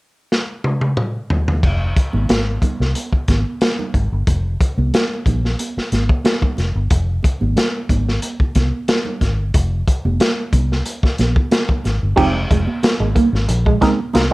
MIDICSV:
0, 0, Header, 1, 7, 480
1, 0, Start_track
1, 0, Key_signature, -4, "minor"
1, 0, Tempo, 659341
1, 1185, Time_signature, 4, 2, 24, 8
1, 10434, End_track
2, 0, Start_track
2, 0, Title_t, "Clav"
2, 0, Program_c, 0, 7
2, 8853, Note_on_c, 0, 56, 86
2, 8857, Note_on_c, 0, 60, 79
2, 8858, Note_on_c, 0, 63, 80
2, 8862, Note_on_c, 0, 67, 89
2, 9344, Note_off_c, 0, 56, 0
2, 9346, Note_off_c, 0, 60, 0
2, 9346, Note_off_c, 0, 63, 0
2, 9348, Note_off_c, 0, 67, 0
2, 10055, Note_on_c, 0, 56, 89
2, 10057, Note_on_c, 0, 60, 79
2, 10061, Note_on_c, 0, 63, 87
2, 10062, Note_on_c, 0, 70, 101
2, 10185, Note_off_c, 0, 56, 0
2, 10186, Note_off_c, 0, 60, 0
2, 10189, Note_off_c, 0, 63, 0
2, 10189, Note_off_c, 0, 70, 0
2, 10292, Note_on_c, 0, 63, 85
2, 10299, Note_on_c, 0, 65, 91
2, 10360, Note_off_c, 0, 63, 0
2, 10363, Note_off_c, 0, 65, 0
2, 10434, End_track
3, 0, Start_track
3, 0, Title_t, "Clean electric guitar"
3, 0, Program_c, 1, 27
3, 8863, Note_on_c, 1, 53, 84
3, 8936, Note_off_c, 1, 53, 0
3, 9105, Note_on_c, 1, 56, 69
3, 9177, Note_off_c, 1, 56, 0
3, 9466, Note_on_c, 1, 56, 66
3, 9531, Note_off_c, 1, 56, 0
3, 9577, Note_on_c, 1, 58, 66
3, 9650, Note_off_c, 1, 58, 0
3, 9948, Note_on_c, 1, 56, 84
3, 10012, Note_off_c, 1, 56, 0
3, 10058, Note_on_c, 1, 56, 76
3, 10131, Note_off_c, 1, 56, 0
3, 10434, End_track
4, 0, Start_track
4, 0, Title_t, "Fingered electric bass"
4, 0, Program_c, 2, 33
4, 1188, Note_on_c, 2, 29, 89
4, 1388, Note_off_c, 2, 29, 0
4, 1558, Note_on_c, 2, 32, 80
4, 1651, Note_off_c, 2, 32, 0
4, 1669, Note_on_c, 2, 32, 76
4, 1869, Note_off_c, 2, 32, 0
4, 2040, Note_on_c, 2, 36, 74
4, 2132, Note_off_c, 2, 36, 0
4, 2391, Note_on_c, 2, 32, 90
4, 2496, Note_off_c, 2, 32, 0
4, 2871, Note_on_c, 2, 32, 80
4, 2976, Note_off_c, 2, 32, 0
4, 3001, Note_on_c, 2, 31, 77
4, 3093, Note_off_c, 2, 31, 0
4, 3110, Note_on_c, 2, 29, 82
4, 3310, Note_off_c, 2, 29, 0
4, 3477, Note_on_c, 2, 36, 72
4, 3571, Note_off_c, 2, 36, 0
4, 3829, Note_on_c, 2, 34, 81
4, 4030, Note_off_c, 2, 34, 0
4, 4311, Note_on_c, 2, 32, 81
4, 4416, Note_off_c, 2, 32, 0
4, 4790, Note_on_c, 2, 29, 79
4, 4896, Note_off_c, 2, 29, 0
4, 4916, Note_on_c, 2, 31, 87
4, 5010, Note_off_c, 2, 31, 0
4, 5030, Note_on_c, 2, 29, 98
4, 5231, Note_off_c, 2, 29, 0
4, 5399, Note_on_c, 2, 32, 78
4, 5492, Note_off_c, 2, 32, 0
4, 5750, Note_on_c, 2, 32, 77
4, 5950, Note_off_c, 2, 32, 0
4, 6232, Note_on_c, 2, 36, 88
4, 6337, Note_off_c, 2, 36, 0
4, 6709, Note_on_c, 2, 32, 89
4, 6836, Note_off_c, 2, 32, 0
4, 6836, Note_on_c, 2, 31, 74
4, 6930, Note_off_c, 2, 31, 0
4, 6949, Note_on_c, 2, 29, 89
4, 7149, Note_off_c, 2, 29, 0
4, 7316, Note_on_c, 2, 29, 82
4, 7410, Note_off_c, 2, 29, 0
4, 7666, Note_on_c, 2, 36, 77
4, 7867, Note_off_c, 2, 36, 0
4, 8147, Note_on_c, 2, 34, 84
4, 8252, Note_off_c, 2, 34, 0
4, 8629, Note_on_c, 2, 32, 77
4, 8733, Note_off_c, 2, 32, 0
4, 8756, Note_on_c, 2, 31, 68
4, 8848, Note_off_c, 2, 31, 0
4, 8864, Note_on_c, 2, 29, 87
4, 9064, Note_off_c, 2, 29, 0
4, 9107, Note_on_c, 2, 29, 97
4, 9211, Note_off_c, 2, 29, 0
4, 9464, Note_on_c, 2, 32, 83
4, 9560, Note_off_c, 2, 32, 0
4, 9704, Note_on_c, 2, 32, 84
4, 9800, Note_off_c, 2, 32, 0
4, 9819, Note_on_c, 2, 34, 104
4, 10020, Note_off_c, 2, 34, 0
4, 10299, Note_on_c, 2, 36, 89
4, 10405, Note_off_c, 2, 36, 0
4, 10434, End_track
5, 0, Start_track
5, 0, Title_t, "Muted clean electric guitar strokes"
5, 8988, Note_on_c, 9, 29, 44
5, 9061, Note_off_c, 9, 29, 0
5, 9343, Note_on_c, 9, 29, 44
5, 9416, Note_off_c, 9, 29, 0
5, 9818, Note_on_c, 9, 29, 44
5, 9891, Note_off_c, 9, 29, 0
5, 10434, End_track
6, 0, Start_track
6, 0, Title_t, "Muted fingered electric bass strokes"
6, 2278, Note_on_c, 9, 29, 44
6, 2351, Note_off_c, 9, 29, 0
6, 4202, Note_on_c, 9, 29, 45
6, 4275, Note_off_c, 9, 29, 0
6, 6116, Note_on_c, 9, 29, 45
6, 6189, Note_off_c, 9, 29, 0
6, 8031, Note_on_c, 9, 29, 43
6, 8104, Note_off_c, 9, 29, 0
6, 10434, End_track
7, 0, Start_track
7, 0, Title_t, "Drums"
7, 233, Note_on_c, 9, 38, 54
7, 305, Note_off_c, 9, 38, 0
7, 468, Note_on_c, 9, 48, 62
7, 540, Note_off_c, 9, 48, 0
7, 592, Note_on_c, 9, 48, 61
7, 665, Note_off_c, 9, 48, 0
7, 706, Note_on_c, 9, 47, 72
7, 779, Note_off_c, 9, 47, 0
7, 948, Note_on_c, 9, 43, 83
7, 1021, Note_off_c, 9, 43, 0
7, 1077, Note_on_c, 9, 43, 86
7, 1150, Note_off_c, 9, 43, 0
7, 1188, Note_on_c, 9, 36, 95
7, 1190, Note_on_c, 9, 49, 73
7, 1261, Note_off_c, 9, 36, 0
7, 1263, Note_off_c, 9, 49, 0
7, 1431, Note_on_c, 9, 36, 92
7, 1431, Note_on_c, 9, 42, 70
7, 1504, Note_off_c, 9, 36, 0
7, 1504, Note_off_c, 9, 42, 0
7, 1552, Note_on_c, 9, 63, 61
7, 1625, Note_off_c, 9, 63, 0
7, 1668, Note_on_c, 9, 62, 33
7, 1668, Note_on_c, 9, 63, 70
7, 1669, Note_on_c, 9, 42, 77
7, 1676, Note_on_c, 9, 38, 96
7, 1741, Note_off_c, 9, 62, 0
7, 1741, Note_off_c, 9, 63, 0
7, 1742, Note_off_c, 9, 42, 0
7, 1749, Note_off_c, 9, 38, 0
7, 1907, Note_on_c, 9, 36, 79
7, 1910, Note_on_c, 9, 42, 71
7, 1917, Note_on_c, 9, 63, 64
7, 1917, Note_on_c, 9, 64, 62
7, 1980, Note_off_c, 9, 36, 0
7, 1983, Note_off_c, 9, 42, 0
7, 1989, Note_off_c, 9, 63, 0
7, 1989, Note_off_c, 9, 64, 0
7, 2049, Note_on_c, 9, 38, 34
7, 2121, Note_off_c, 9, 38, 0
7, 2149, Note_on_c, 9, 42, 89
7, 2156, Note_on_c, 9, 63, 42
7, 2222, Note_off_c, 9, 42, 0
7, 2228, Note_off_c, 9, 63, 0
7, 2275, Note_on_c, 9, 36, 70
7, 2348, Note_off_c, 9, 36, 0
7, 2387, Note_on_c, 9, 42, 63
7, 2390, Note_on_c, 9, 36, 81
7, 2396, Note_on_c, 9, 38, 32
7, 2398, Note_on_c, 9, 62, 33
7, 2398, Note_on_c, 9, 63, 80
7, 2460, Note_off_c, 9, 42, 0
7, 2463, Note_off_c, 9, 36, 0
7, 2469, Note_off_c, 9, 38, 0
7, 2471, Note_off_c, 9, 62, 0
7, 2471, Note_off_c, 9, 63, 0
7, 2628, Note_on_c, 9, 42, 72
7, 2633, Note_on_c, 9, 38, 103
7, 2635, Note_on_c, 9, 62, 30
7, 2635, Note_on_c, 9, 63, 70
7, 2701, Note_off_c, 9, 42, 0
7, 2706, Note_off_c, 9, 38, 0
7, 2708, Note_off_c, 9, 62, 0
7, 2708, Note_off_c, 9, 63, 0
7, 2759, Note_on_c, 9, 64, 72
7, 2832, Note_off_c, 9, 64, 0
7, 2869, Note_on_c, 9, 36, 86
7, 2871, Note_on_c, 9, 42, 47
7, 2878, Note_on_c, 9, 62, 38
7, 2942, Note_off_c, 9, 36, 0
7, 2944, Note_off_c, 9, 42, 0
7, 2951, Note_off_c, 9, 62, 0
7, 3110, Note_on_c, 9, 36, 116
7, 3110, Note_on_c, 9, 42, 84
7, 3117, Note_on_c, 9, 62, 30
7, 3183, Note_off_c, 9, 36, 0
7, 3183, Note_off_c, 9, 42, 0
7, 3189, Note_off_c, 9, 62, 0
7, 3353, Note_on_c, 9, 36, 96
7, 3355, Note_on_c, 9, 42, 74
7, 3426, Note_off_c, 9, 36, 0
7, 3428, Note_off_c, 9, 42, 0
7, 3482, Note_on_c, 9, 63, 67
7, 3555, Note_off_c, 9, 63, 0
7, 3595, Note_on_c, 9, 42, 86
7, 3595, Note_on_c, 9, 62, 34
7, 3595, Note_on_c, 9, 63, 73
7, 3602, Note_on_c, 9, 38, 105
7, 3668, Note_off_c, 9, 42, 0
7, 3668, Note_off_c, 9, 62, 0
7, 3668, Note_off_c, 9, 63, 0
7, 3674, Note_off_c, 9, 38, 0
7, 3828, Note_on_c, 9, 36, 84
7, 3833, Note_on_c, 9, 42, 76
7, 3839, Note_on_c, 9, 62, 30
7, 3839, Note_on_c, 9, 63, 66
7, 3839, Note_on_c, 9, 64, 62
7, 3901, Note_off_c, 9, 36, 0
7, 3905, Note_off_c, 9, 42, 0
7, 3912, Note_off_c, 9, 62, 0
7, 3912, Note_off_c, 9, 63, 0
7, 3912, Note_off_c, 9, 64, 0
7, 3969, Note_on_c, 9, 38, 36
7, 4042, Note_off_c, 9, 38, 0
7, 4071, Note_on_c, 9, 42, 99
7, 4077, Note_on_c, 9, 62, 28
7, 4077, Note_on_c, 9, 63, 38
7, 4144, Note_off_c, 9, 42, 0
7, 4150, Note_off_c, 9, 62, 0
7, 4150, Note_off_c, 9, 63, 0
7, 4209, Note_on_c, 9, 38, 34
7, 4281, Note_off_c, 9, 38, 0
7, 4310, Note_on_c, 9, 42, 58
7, 4314, Note_on_c, 9, 63, 70
7, 4319, Note_on_c, 9, 38, 31
7, 4383, Note_off_c, 9, 42, 0
7, 4387, Note_off_c, 9, 63, 0
7, 4392, Note_off_c, 9, 38, 0
7, 4436, Note_on_c, 9, 36, 91
7, 4509, Note_off_c, 9, 36, 0
7, 4546, Note_on_c, 9, 63, 76
7, 4550, Note_on_c, 9, 42, 76
7, 4555, Note_on_c, 9, 38, 100
7, 4619, Note_off_c, 9, 63, 0
7, 4623, Note_off_c, 9, 42, 0
7, 4628, Note_off_c, 9, 38, 0
7, 4670, Note_on_c, 9, 64, 66
7, 4675, Note_on_c, 9, 36, 104
7, 4743, Note_off_c, 9, 64, 0
7, 4748, Note_off_c, 9, 36, 0
7, 4781, Note_on_c, 9, 62, 37
7, 4791, Note_on_c, 9, 42, 47
7, 4794, Note_on_c, 9, 38, 31
7, 4854, Note_off_c, 9, 62, 0
7, 4863, Note_off_c, 9, 42, 0
7, 4867, Note_off_c, 9, 38, 0
7, 5027, Note_on_c, 9, 42, 89
7, 5029, Note_on_c, 9, 36, 112
7, 5099, Note_off_c, 9, 42, 0
7, 5102, Note_off_c, 9, 36, 0
7, 5262, Note_on_c, 9, 62, 33
7, 5273, Note_on_c, 9, 36, 93
7, 5275, Note_on_c, 9, 42, 73
7, 5334, Note_off_c, 9, 62, 0
7, 5345, Note_off_c, 9, 36, 0
7, 5347, Note_off_c, 9, 42, 0
7, 5394, Note_on_c, 9, 63, 65
7, 5467, Note_off_c, 9, 63, 0
7, 5507, Note_on_c, 9, 63, 79
7, 5510, Note_on_c, 9, 42, 82
7, 5516, Note_on_c, 9, 38, 86
7, 5580, Note_off_c, 9, 63, 0
7, 5583, Note_off_c, 9, 42, 0
7, 5589, Note_off_c, 9, 38, 0
7, 5747, Note_on_c, 9, 36, 79
7, 5748, Note_on_c, 9, 42, 77
7, 5754, Note_on_c, 9, 62, 28
7, 5754, Note_on_c, 9, 63, 68
7, 5754, Note_on_c, 9, 64, 67
7, 5819, Note_off_c, 9, 36, 0
7, 5821, Note_off_c, 9, 42, 0
7, 5827, Note_off_c, 9, 62, 0
7, 5827, Note_off_c, 9, 63, 0
7, 5827, Note_off_c, 9, 64, 0
7, 5886, Note_on_c, 9, 38, 38
7, 5959, Note_off_c, 9, 38, 0
7, 5986, Note_on_c, 9, 42, 95
7, 5992, Note_on_c, 9, 62, 27
7, 5992, Note_on_c, 9, 63, 40
7, 6059, Note_off_c, 9, 42, 0
7, 6065, Note_off_c, 9, 62, 0
7, 6065, Note_off_c, 9, 63, 0
7, 6114, Note_on_c, 9, 36, 72
7, 6187, Note_off_c, 9, 36, 0
7, 6224, Note_on_c, 9, 42, 68
7, 6229, Note_on_c, 9, 36, 73
7, 6233, Note_on_c, 9, 38, 32
7, 6233, Note_on_c, 9, 63, 86
7, 6297, Note_off_c, 9, 42, 0
7, 6302, Note_off_c, 9, 36, 0
7, 6306, Note_off_c, 9, 38, 0
7, 6306, Note_off_c, 9, 63, 0
7, 6466, Note_on_c, 9, 42, 79
7, 6467, Note_on_c, 9, 63, 74
7, 6471, Note_on_c, 9, 38, 113
7, 6539, Note_off_c, 9, 42, 0
7, 6540, Note_off_c, 9, 63, 0
7, 6544, Note_off_c, 9, 38, 0
7, 6590, Note_on_c, 9, 64, 69
7, 6663, Note_off_c, 9, 64, 0
7, 6704, Note_on_c, 9, 62, 38
7, 6707, Note_on_c, 9, 36, 80
7, 6709, Note_on_c, 9, 42, 54
7, 6713, Note_on_c, 9, 38, 31
7, 6777, Note_off_c, 9, 62, 0
7, 6780, Note_off_c, 9, 36, 0
7, 6782, Note_off_c, 9, 42, 0
7, 6785, Note_off_c, 9, 38, 0
7, 6946, Note_on_c, 9, 42, 83
7, 6948, Note_on_c, 9, 36, 106
7, 6948, Note_on_c, 9, 62, 27
7, 7018, Note_off_c, 9, 42, 0
7, 7020, Note_off_c, 9, 36, 0
7, 7020, Note_off_c, 9, 62, 0
7, 7190, Note_on_c, 9, 36, 94
7, 7190, Note_on_c, 9, 42, 73
7, 7263, Note_off_c, 9, 36, 0
7, 7263, Note_off_c, 9, 42, 0
7, 7318, Note_on_c, 9, 63, 66
7, 7390, Note_off_c, 9, 63, 0
7, 7427, Note_on_c, 9, 42, 82
7, 7427, Note_on_c, 9, 63, 77
7, 7433, Note_on_c, 9, 38, 94
7, 7499, Note_off_c, 9, 63, 0
7, 7500, Note_off_c, 9, 42, 0
7, 7506, Note_off_c, 9, 38, 0
7, 7664, Note_on_c, 9, 36, 92
7, 7666, Note_on_c, 9, 42, 70
7, 7673, Note_on_c, 9, 62, 28
7, 7673, Note_on_c, 9, 63, 59
7, 7673, Note_on_c, 9, 64, 65
7, 7737, Note_off_c, 9, 36, 0
7, 7738, Note_off_c, 9, 42, 0
7, 7745, Note_off_c, 9, 62, 0
7, 7745, Note_off_c, 9, 63, 0
7, 7745, Note_off_c, 9, 64, 0
7, 7805, Note_on_c, 9, 38, 35
7, 7878, Note_off_c, 9, 38, 0
7, 7903, Note_on_c, 9, 42, 103
7, 7910, Note_on_c, 9, 63, 38
7, 7976, Note_off_c, 9, 42, 0
7, 7982, Note_off_c, 9, 63, 0
7, 8031, Note_on_c, 9, 36, 82
7, 8043, Note_on_c, 9, 38, 31
7, 8104, Note_off_c, 9, 36, 0
7, 8116, Note_off_c, 9, 38, 0
7, 8142, Note_on_c, 9, 42, 64
7, 8151, Note_on_c, 9, 38, 32
7, 8152, Note_on_c, 9, 62, 37
7, 8152, Note_on_c, 9, 63, 78
7, 8214, Note_off_c, 9, 42, 0
7, 8223, Note_off_c, 9, 38, 0
7, 8225, Note_off_c, 9, 62, 0
7, 8225, Note_off_c, 9, 63, 0
7, 8270, Note_on_c, 9, 36, 93
7, 8343, Note_off_c, 9, 36, 0
7, 8382, Note_on_c, 9, 42, 76
7, 8382, Note_on_c, 9, 63, 74
7, 8388, Note_on_c, 9, 38, 102
7, 8455, Note_off_c, 9, 42, 0
7, 8455, Note_off_c, 9, 63, 0
7, 8461, Note_off_c, 9, 38, 0
7, 8508, Note_on_c, 9, 64, 62
7, 8510, Note_on_c, 9, 36, 97
7, 8580, Note_off_c, 9, 64, 0
7, 8583, Note_off_c, 9, 36, 0
7, 8622, Note_on_c, 9, 62, 41
7, 8628, Note_on_c, 9, 42, 54
7, 8631, Note_on_c, 9, 38, 34
7, 8694, Note_off_c, 9, 62, 0
7, 8700, Note_off_c, 9, 42, 0
7, 8704, Note_off_c, 9, 38, 0
7, 8858, Note_on_c, 9, 62, 31
7, 8862, Note_on_c, 9, 49, 95
7, 8863, Note_on_c, 9, 36, 117
7, 8930, Note_off_c, 9, 62, 0
7, 8935, Note_off_c, 9, 49, 0
7, 8936, Note_off_c, 9, 36, 0
7, 9105, Note_on_c, 9, 36, 103
7, 9106, Note_on_c, 9, 42, 83
7, 9178, Note_off_c, 9, 36, 0
7, 9178, Note_off_c, 9, 42, 0
7, 9224, Note_on_c, 9, 63, 79
7, 9297, Note_off_c, 9, 63, 0
7, 9340, Note_on_c, 9, 62, 39
7, 9340, Note_on_c, 9, 63, 75
7, 9342, Note_on_c, 9, 42, 89
7, 9349, Note_on_c, 9, 38, 105
7, 9413, Note_off_c, 9, 62, 0
7, 9413, Note_off_c, 9, 63, 0
7, 9415, Note_off_c, 9, 42, 0
7, 9422, Note_off_c, 9, 38, 0
7, 9579, Note_on_c, 9, 36, 92
7, 9580, Note_on_c, 9, 42, 71
7, 9580, Note_on_c, 9, 63, 67
7, 9580, Note_on_c, 9, 64, 74
7, 9652, Note_off_c, 9, 36, 0
7, 9653, Note_off_c, 9, 42, 0
7, 9653, Note_off_c, 9, 63, 0
7, 9653, Note_off_c, 9, 64, 0
7, 9719, Note_on_c, 9, 38, 39
7, 9791, Note_off_c, 9, 38, 0
7, 9818, Note_on_c, 9, 42, 94
7, 9823, Note_on_c, 9, 62, 28
7, 9891, Note_off_c, 9, 42, 0
7, 9896, Note_off_c, 9, 62, 0
7, 9946, Note_on_c, 9, 36, 74
7, 10019, Note_off_c, 9, 36, 0
7, 10059, Note_on_c, 9, 42, 74
7, 10060, Note_on_c, 9, 36, 85
7, 10062, Note_on_c, 9, 63, 86
7, 10068, Note_on_c, 9, 38, 33
7, 10131, Note_off_c, 9, 42, 0
7, 10133, Note_off_c, 9, 36, 0
7, 10135, Note_off_c, 9, 63, 0
7, 10141, Note_off_c, 9, 38, 0
7, 10290, Note_on_c, 9, 62, 33
7, 10290, Note_on_c, 9, 63, 83
7, 10299, Note_on_c, 9, 42, 86
7, 10305, Note_on_c, 9, 38, 113
7, 10362, Note_off_c, 9, 62, 0
7, 10362, Note_off_c, 9, 63, 0
7, 10372, Note_off_c, 9, 42, 0
7, 10377, Note_off_c, 9, 38, 0
7, 10434, End_track
0, 0, End_of_file